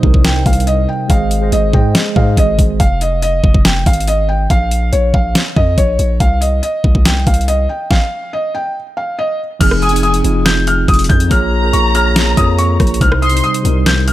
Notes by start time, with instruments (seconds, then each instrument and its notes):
Already playing: tine electric piano G3 D#4 C5, felt piano D#5
0.00 808-style bass C2, tine electric piano C3 G3 D#4, kick
0.05 tine electric piano A#4
0.14 kick
0.25 felt piano G5, snare, closed hi-hat
0.46 808-style bass C2, felt piano F5, kick, closed hi-hat
0.53 closed hi-hat
0.60 closed hi-hat
0.67 felt piano D#5, closed hi-hat
0.89 felt piano G5
1.08 808-style bass G#1, tine electric piano G#3 G#4 C5 D#5, felt piano F5, kick, closed hi-hat
1.31 closed hi-hat
1.40 tine electric piano G#3 G#4 C5 D#5
1.52 808-style bass G#1, felt piano D#5, closed hi-hat
1.72 808-style bass G#2, tine electric piano G#3 G#4 C5 D#5, felt piano G5, kick
1.95 snare, closed hi-hat
2.15 808-style bass G#2, tine electric piano G#3 G#4 C5 D#5, felt piano F5, kick
2.37 808-style bass G#1, felt piano D#5, kick, closed hi-hat
2.59 808-style bass G#1, kick, closed hi-hat
2.80 808-style bass F1, felt piano F5, kick, closed hi-hat
3.01 felt piano D#5, closed hi-hat
3.22 felt piano D#5, closed hi-hat
3.44 808-style bass F1, kick
3.54 808-style bass F1, kick
3.65 felt piano G5, snare, closed hi-hat
3.86 808-style bass G#1, felt piano F5, kick, closed hi-hat
3.93 closed hi-hat
4.00 closed hi-hat
4.08 felt piano D#5, closed hi-hat
4.29 felt piano G5
4.50 808-style bass A#1, felt piano F5, kick, closed hi-hat
4.71 closed hi-hat
4.92 808-style bass A#1, felt piano C#5, closed hi-hat
5.14 808-style bass A#1, felt piano F5, kick
5.35 snare, closed hi-hat
5.56 808-style bass F2, felt piano D#5, kick
5.78 808-style bass A#1, felt piano C#5, kick, closed hi-hat
5.99 808-style bass A#1, closed hi-hat
6.20 808-style bass C2, felt piano F5, kick, closed hi-hat
6.41 felt piano D#5, closed hi-hat
6.63 felt piano D#5, closed hi-hat
6.84 808-style bass C2, kick
6.95 808-style bass C2, kick
7.05 felt piano G5, snare, closed hi-hat
7.27 808-style bass C2, felt piano F5, kick, closed hi-hat
7.34 closed hi-hat
7.41 closed hi-hat
7.48 felt piano D#5, closed hi-hat
7.69 felt piano G5
7.91 felt piano F5, kick, snare
8.33 felt piano D#5
8.55 felt piano G5
8.97 felt piano F5
9.19 felt piano D#5
9.59 808-style bass F1, tine electric piano F3 C4 D#4 G#4, felt piano F6, kick, closed hi-hat, crash
9.71 cross-stick
9.82 violin section G#5, felt piano D#6, closed hi-hat
9.89 tine electric piano F3 C4 D#4, closed hi-hat
9.94 tine electric piano G#4, closed hi-hat
10.03 felt piano D#6, closed hi-hat
10.14 closed hi-hat
10.23 808-style bass F1, tine electric piano F3 C4 D#4 F4, closed hi-hat
10.45 felt piano G6, snare, closed hi-hat
10.67 felt piano F6, closed hi-hat
10.88 808-style bass F1, felt piano D#6, kick, closed hi-hat
10.94 closed hi-hat
10.99 closed hi-hat
11.04 closed hi-hat
11.09 808-style bass F2, felt piano G6, kick
11.20 closed hi-hat
11.29 808-style bass A#1, tine electric piano A#3 F4 G#4 C#5, violin section A#5, felt piano F6, kick, closed hi-hat
11.61 tine electric piano A#3 F4 G#4 A#4
11.73 808-style bass A#1, felt piano C#6, closed hi-hat
11.93 tine electric piano A#3 F4 G#4 C#5, felt piano F6, closed hi-hat
12.16 snare, closed hi-hat
12.36 808-style bass F2, tine electric piano A#3 F4 G#4 C#5, felt piano D#6, kick, closed hi-hat
12.59 felt piano C#6, closed hi-hat
12.80 808-style bass A#1, kick, cross-stick, closed hi-hat
12.87 closed hi-hat
12.94 closed hi-hat
12.99 808-style bass C2, tine electric piano C3 G3 D#4 C5, felt piano F6, kick, closed hi-hat
13.12 cross-stick
13.22 violin section C6, felt piano D#6, closed hi-hat
13.29 tine electric piano C3 G3, closed hi-hat
13.34 tine electric piano D#4 C5, closed hi-hat
13.44 felt piano D#6, closed hi-hat
13.54 closed hi-hat
13.63 808-style bass C2, tine electric piano C3 G3 D#4 A#4, closed hi-hat
13.86 felt piano G6, snare, closed hi-hat
14.08 felt piano F6, closed hi-hat